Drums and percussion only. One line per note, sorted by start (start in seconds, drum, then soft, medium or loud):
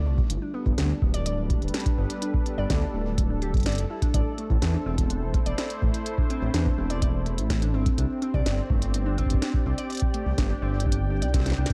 0.18 kick loud
0.30 closed hi-hat medium
0.66 kick loud
0.78 snare loud
0.78 closed hi-hat medium
1.02 kick loud
1.14 closed hi-hat medium
1.26 closed hi-hat medium
1.50 kick loud
1.50 closed hi-hat soft
1.62 closed hi-hat soft
1.68 closed hi-hat soft
1.74 snare loud
1.74 closed hi-hat medium
1.80 closed hi-hat soft
1.86 kick loud
1.86 closed hi-hat soft
2.10 closed hi-hat medium
2.22 closed hi-hat medium
2.34 kick loud
2.46 closed hi-hat soft
2.70 kick loud
2.70 snare loud
2.70 closed hi-hat medium
3.18 kick loud
3.18 closed hi-hat medium
3.42 closed hi-hat soft
3.54 kick loud
3.54 closed hi-hat soft
3.57 closed hi-hat soft
3.60 closed hi-hat soft
3.63 snare loud
3.63 closed hi-hat soft
3.66 closed hi-hat medium
3.69 closed hi-hat soft
3.72 closed hi-hat soft
3.75 closed hi-hat soft
3.78 closed hi-hat soft
4.02 kick loud
4.02 closed hi-hat soft
4.14 kick loud
4.14 closed hi-hat medium
4.38 closed hi-hat soft
4.50 kick loud
4.62 snare loud
4.62 closed hi-hat medium
4.98 kick medium
4.98 closed hi-hat soft
5.10 closed hi-hat medium
5.34 kick loud
5.34 closed hi-hat soft
5.46 closed hi-hat soft
5.58 snare loud
5.58 closed hi-hat medium
5.70 closed hi-hat soft
5.82 kick loud
5.94 closed hi-hat soft
6.06 closed hi-hat medium
6.18 kick loud
6.30 closed hi-hat soft
6.54 snare loud
6.54 closed hi-hat medium
6.66 kick loud
6.90 closed hi-hat soft
7.02 kick loud
7.02 closed hi-hat medium
7.26 closed hi-hat soft
7.38 closed hi-hat soft
7.50 kick medium
7.50 snare loud
7.50 closed hi-hat medium
7.62 closed hi-hat soft
7.86 kick loud
7.86 closed hi-hat soft
7.98 closed hi-hat medium
8.22 closed hi-hat soft
8.34 kick medium
8.46 snare loud
8.46 closed hi-hat medium
8.70 kick loud
8.82 closed hi-hat soft
8.94 closed hi-hat medium
9.18 kick soft
9.18 closed hi-hat soft
9.26 kick medium
9.30 kick medium
9.30 closed hi-hat soft
9.42 snare loud
9.42 closed hi-hat medium
9.54 kick loud
9.78 closed hi-hat soft
9.90 closed hi-hat soft
9.92 closed hi-hat soft
9.95 closed hi-hat soft
9.97 closed hi-hat soft
10.00 kick loud
10.00 closed hi-hat medium
10.14 closed hi-hat soft
10.38 kick loud
10.38 snare loud
10.38 closed hi-hat medium
10.80 closed hi-hat medium
10.86 kick loud
10.92 closed hi-hat medium
11.22 closed hi-hat medium
11.34 kick loud
11.34 snare soft
11.34 closed hi-hat medium
11.40 snare medium
11.46 snare medium
11.46 closed hi-hat soft
11.50 snare medium
11.52 snare medium
11.66 snare loud
11.66 closed hi-hat soft